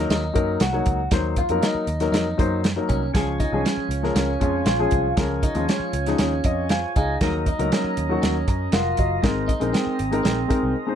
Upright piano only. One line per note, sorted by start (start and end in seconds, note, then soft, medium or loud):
0.00 0.22 F#3 medium
0.00 0.23 A#3 medium
0.00 0.23 D#4 medium
0.00 0.23 A#4 medium
0.34 0.60 F#3 medium
0.34 0.60 A#3 medium
0.34 0.61 D#4 medium
0.34 0.61 A#4 medium
0.73 0.98 F#3 medium
0.73 0.99 A#3 medium
0.73 0.99 D#4 medium
0.73 0.99 C#5 medium
1.12 1.37 F#3 medium
1.12 1.37 A#3 medium
1.12 1.37 D#4 medium
1.12 1.38 C5 medium
1.50 1.83 F#3 medium
1.50 1.84 A#3 medium
1.50 1.84 D#4 medium
1.50 1.84 A#4 medium
2.00 2.26 F#3 medium
2.00 2.26 A#3 medium
2.00 2.26 D#4 medium
2.00 2.27 A#4 medium
2.38 2.63 F#3 medium
2.38 2.64 A#3 medium
2.38 2.64 D#4 medium
2.38 2.64 C5 medium
2.76 3.02 F#3 medium
2.76 3.02 A#3 medium
2.76 3.02 D#4 medium
2.76 3.02 A#4 medium
3.14 3.40 F3 medium
3.14 3.40 G#3 medium
3.14 3.40 C#4 medium
3.14 3.41 G#4 medium
3.52 3.86 F3 medium
3.52 3.86 G#3 medium
3.52 3.86 C#4 medium
3.52 3.87 G#4 medium
4.03 4.28 F3 medium
4.03 4.28 G#3 medium
4.03 4.29 C#4 medium
4.03 4.29 A#4 medium
4.40 4.66 F3 medium
4.40 4.66 G#3 medium
4.40 4.67 C#4 medium
4.40 4.67 F4 medium
4.79 5.04 F3 medium
4.79 5.05 G#3 medium
4.79 5.05 C#4 medium
4.79 5.05 G#4 medium
5.16 5.42 F3 medium
5.16 5.43 G#3 medium
5.16 5.43 C#4 medium
5.16 5.43 A#4 medium
5.54 5.89 F3 medium
5.54 5.89 G#3 medium
5.54 5.89 C#4 medium
5.54 5.90 F4 medium
6.07 6.32 F3 medium
6.07 6.32 G#3 medium
6.07 6.32 C#4 medium
6.07 6.32 D#4 medium
6.46 6.70 F4 medium
6.46 6.69 C#5 medium
6.46 6.69 D#5 medium
6.71 6.95 C5 medium
6.71 6.94 F5 medium
6.71 6.95 G#5 medium
6.97 7.45 G#4 medium
6.97 7.44 F5 medium
6.97 7.20 G#5 medium
7.21 7.46 F#3 medium
7.21 7.46 A#3 medium
7.21 7.47 D#4 medium
7.21 7.47 A#4 medium
7.59 7.92 F#3 medium
7.59 7.93 A#3 medium
7.59 7.93 D#4 medium
7.59 7.93 A#4 medium
8.09 8.35 F#3 medium
8.09 8.35 A#3 medium
8.09 8.35 D#4 medium
8.09 8.35 F#4 medium
8.48 8.72 C#5 medium
8.48 8.72 A#5 medium
8.74 8.98 A#4 medium
8.74 8.97 F#5 medium
8.99 9.47 F#4 medium
8.99 9.47 D#5 medium
9.22 9.48 G#3 medium
9.22 9.48 C4 medium
9.22 9.49 D#4 medium
9.22 9.49 A#4 medium
9.60 9.94 G#3 medium
9.60 9.95 C4 medium
9.60 9.95 D#4 medium
9.60 9.95 A#4 medium
10.11 10.37 G#3 medium
10.11 10.37 C4 medium
10.11 10.37 D#4 medium
10.11 10.38 A#4 medium
10.48 10.74 G#3 medium
10.48 10.75 C4 medium
10.48 10.75 D#4 medium
10.48 10.75 A#4 medium
10.87 10.95 G#3 medium
10.87 10.95 C4 medium
10.87 10.95 D#4 medium
10.87 10.95 C5 medium